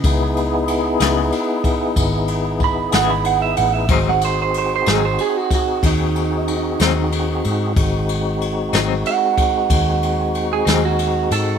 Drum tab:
RD |xxxxxxxxxxxx|xxxxxxxxxxxx|xxxxxxxxxxxx|
SD |---o-----o--|---o-o---o--|---o-----o--|
BD |o----oo-o---|o----oo-----|o----oo-----|